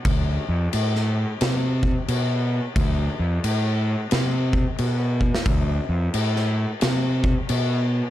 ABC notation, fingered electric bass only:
X:1
M:4/4
L:1/8
Q:"Swing" 1/4=89
K:Ddor
V:1 name="Fingered electric bass" clef=bass
D,, F,, A,,2 C,2 B,,2 | D,, F,, A,,2 C,2 B,,2 | D,, F,, A,,2 C,2 B,,2 |]